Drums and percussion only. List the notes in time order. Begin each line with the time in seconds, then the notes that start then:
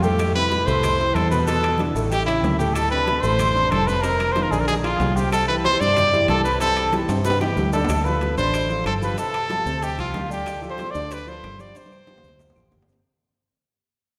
0.03 high conga, maracas
0.19 high bongo, high conga, high timbale, claves, maracas
0.35 high bongo, high conga, maracas
0.52 high bongo, high conga, high timbale, maracas
0.68 high bongo, high conga, maracas
0.83 high bongo, high conga, low conga, high timbale, claves, maracas
1.00 high bongo, high conga, maracas
1.15 high bongo, low bongo, high conga, high timbale, claves, maracas
1.31 high conga, maracas
1.47 high bongo, high timbale, maracas
1.63 high bongo, high conga, high timbale, claves, maracas
1.78 high bongo, high conga, high timbale, maracas
1.96 high bongo, maracas
2.10 high bongo, high conga, high timbale, maracas
2.27 high bongo, high conga, high timbale, claves, maracas
2.43 high bongo, low bongo, high conga, high timbale, low timbale, maracas
2.59 high conga, maracas
2.75 high bongo, high timbale, claves, maracas
2.92 high bongo, maracas
3.07 high bongo, high conga, high timbale, maracas
3.23 high bongo, high conga, maracas
3.39 high bongo, high conga, low conga, high timbale, claves, maracas
3.55 high bongo, high conga, low conga, maracas
3.72 high bongo, low bongo, high conga, high timbale, claves, maracas
3.87 high conga, maracas
4.04 high bongo, high conga, high timbale, maracas
4.20 high bongo, high conga, high timbale, claves, maracas
4.36 high bongo, high conga, high timbale, maracas
4.52 high bongo, high conga, maracas
4.68 high bongo, high conga, high timbale, maracas
4.84 high bongo, high conga, high timbale, claves, maracas
5.00 high bongo, low bongo, high conga, high timbale, low timbale, maracas
5.17 high conga, maracas
5.32 high bongo, high conga, high timbale, claves, maracas
5.49 high bongo, high conga, maracas
5.65 high bongo, high conga, high timbale, maracas
5.81 high bongo, high conga, maracas
5.97 high bongo, high conga, low conga, high timbale, claves, maracas
6.14 high bongo, high conga, low conga, maracas
6.28 high bongo, low bongo, high conga, high timbale, low timbale, claves, maracas
6.45 maracas
6.60 high bongo, high conga, high timbale, maracas
6.77 high bongo, high conga, high timbale, claves, maracas
6.92 high bongo, high conga, high timbale, maracas
7.09 high bongo, high timbale, maracas
7.24 high bongo, high conga, maracas
7.30 high timbale
7.41 high bongo, high conga, high timbale, claves, maracas
7.56 low bongo, high conga, maracas
7.73 low bongo, high conga, maracas
7.85 low timbale
7.89 high bongo, high conga, high timbale, claves, maracas
8.06 high bongo, high conga, maracas
8.21 high bongo, high conga, high timbale, maracas
8.37 high bongo, high conga, maracas
8.53 high bongo, high conga, high timbale, claves, maracas
8.70 high bongo, high conga, maracas
8.86 high bongo, low bongo, high conga, high timbale, claves, maracas
9.02 high conga, maracas
9.18 high bongo, high conga, high timbale, maracas
9.34 high bongo, high conga, high timbale, claves, maracas
9.50 high bongo, high conga, high timbale, maracas
9.66 high bongo, high conga, maracas
9.82 high bongo, high conga, high timbale, maracas
9.98 high bongo, high conga, high timbale, claves, maracas
10.14 high bongo, low bongo, high conga, high timbale, maracas
10.30 high conga, maracas
10.46 high bongo, high conga, high timbale, claves, maracas
10.62 high bongo, high conga, maracas
10.78 high bongo, high conga, high timbale, maracas
10.95 high bongo, high conga, maracas
11.11 high bongo, high conga, high timbale, claves, maracas
11.27 high bongo, high conga, maracas
11.43 high bongo, low bongo, high conga, high timbale, low timbale, claves, maracas
11.59 high conga, maracas
11.75 high bongo, high conga, high timbale, maracas
11.85 high conga, high timbale
11.91 high bongo, claves, maracas
11.96 high conga
12.07 high bongo, high conga, high timbale, maracas
12.18 low conga, low timbale
12.24 high bongo, maracas
12.28 low conga, low timbale
12.39 high bongo, low conga, low timbale, maracas
12.50 low conga, low timbale
12.56 high bongo, claves, maracas
12.60 low conga
12.71 high bongo, low bongo, low conga, low timbale, maracas
12.82 low timbale
12.88 maracas
12.92 low conga, low timbale